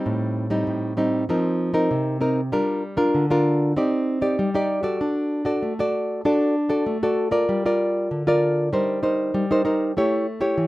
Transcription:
nylon-string guitar
Already playing: G3 C4 D#4
0.06 A2
0.50 G3 C4 D#4
0.67 A2
0.97 G3 C4 D#4
1.29 F3 C4 D#4 A#4
1.74 C4 D#4 A#4
1.91 C3
2.21 C4 D#4 A#4
2.52 G3 D4 F4 A#4
2.97 D4 F4 A#4
3.15 D3
3.30 D4 F4 A#4
3.76 C4 D#4 G4 D5
4.21 D#4 G4 D5
4.39 G3
4.54 D#4 G4 D5
4.83 F#4 A4 D5
5.01 D4
5.45 F#4 A4 D5
5.62 A3
5.79 F#4 A4 D5
6.25 D4 F#4 A4 D5
6.69 F#4 A4 D5
6.86 A3
7.03 F#4 A4 D5
7.31 F4 A#4 D5
7.49 G3
7.66 F4 A#4 D5
8.11 D3
8.27 F4 A#4 D5
8.73 G3 D#4 A#4 C5
9.03 D#4 A#4 C5
9.34 G3
9.51 D#4 A#4 C5
9.65 D#4 A#4 C5
9.97 A3 E4 G4 C#5
10.41 E4 G4 C#5
10.58 E3

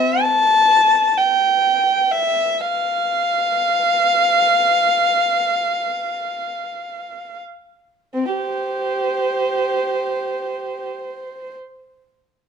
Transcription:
violin
Already playing: C4 E5
0.22 A5
1.17 G5
2.12 E5
2.61 F5
8.14 C4
8.35 G4 C5

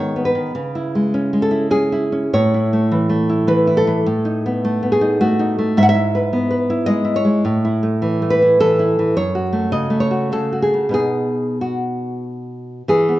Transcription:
nylon-string guitar
Already playing: G#2 D#3 G#3 B3 C#5
0.16 B3
0.25 B4
0.55 C#3
0.75 E4
0.95 G#3
1.14 C#4
1.33 G#3
1.42 A4
1.51 E4
1.70 C#4 G#4
1.92 E4
2.12 C#4
2.33 A2 C#5
2.54 E4
2.73 A3
2.92 E3
3.09 A3
3.29 E4
3.47 E3 B4
3.67 E4
3.77 A4
3.87 E3
4.06 A2
4.25 D#4
4.46 B3
4.65 A3
4.83 B3
4.92 G#4
5.01 D#4
5.21 A3 F#4
5.39 D#4
5.59 A3
5.77 G#2 E5
5.83 F#5
5.89 E5
5.95 E4
6.15 B4
6.33 B3
6.51 B4
6.70 E4
6.86 G#3 D#5
7.05 E4
7.16 C#5
7.25 G#3
7.45 A2
7.65 E4
7.83 A3
8.02 E3
8.22 A3
8.30 B4
8.42 E4
8.60 E3 A4
8.79 E4
8.99 E3
9.17 F#2 C#5
9.35 F#4
9.53 A3
9.72 C#3 D#5
9.90 A3
10.00 C#5
10.11 F#4
10.32 C#3 A4
10.53 F#4
10.62 G#4
10.74 C#3
10.89 B2 B3 D#4
10.94 G#4
11.61 F#4
12.88 E3 G#4
13.09 B3

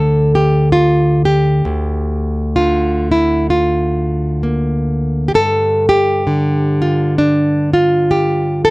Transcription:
nylon-string guitar
Already playing: D2 D3 A4
0.35 G4
0.72 F4
1.25 G4
1.65 D2
2.56 D3 F4
3.12 E4
3.50 F4
4.43 A#3
5.28 G4
5.34 G2 A4
5.89 G4
6.27 D3
6.82 F4
7.18 D4
7.74 F4
8.11 G4
8.65 A4

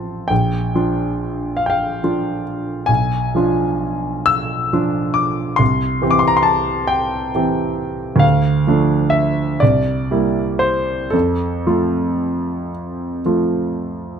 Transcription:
grand piano
Already playing: F3 C4 F4 A5
0.28 A#1 G5
0.75 F3 D4 F4
1.57 F5
1.66 F5 G5
2.03 F3 D4 F4
2.86 B1 G#5
3.35 F3 D4 F4
4.26 E6
4.73 F3 D4 F4
5.14 D6
5.56 C2 C6
6.02 E3 C4 G4
6.11 D6
6.19 C6
6.28 A#5
6.37 C6
6.43 A5
6.87 G5
7.35 E3 C4 G4
8.16 D2 F5
8.67 F3 A3 D4
9.10 E5
9.60 C2 D5
10.11 G3 A#3 E4
10.59 C5
11.10 F2 A4
11.66 F3 A3 F4
13.25 F3 A3 F4

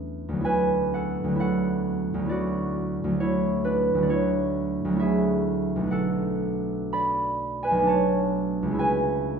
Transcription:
harp
Already playing: E2 F#3 A3 B3 C#4 D4 E4 A4 B4
0.29 D2
0.33 F#3 B3
0.41 E4 G#5
0.45 B4
0.94 A4 F#5
1.24 D2
1.28 F#3 B3
1.36 E4
1.40 A4 F#5
2.14 D2
2.18 F#3 B3
2.26 E4 D5
2.31 F#4
3.04 D2
3.09 F#3 A3
3.20 E4 C#5
3.64 D4 B4
3.94 D2 F#3
4.02 A3 D5
4.10 E4 C#5
4.85 D2 F#3
4.93 A3 E4
5.00 G#4 E5
5.76 B1 A3
5.83 B3
5.87 D4 F#5
5.92 A4
6.93 D5 B5
7.63 B4 G#5
7.71 B1 A3
7.79 B3
7.83 D4
7.87 C#5 A5
8.63 C#2
8.67 G#3 B3
8.75 E4
8.79 B4 G#5

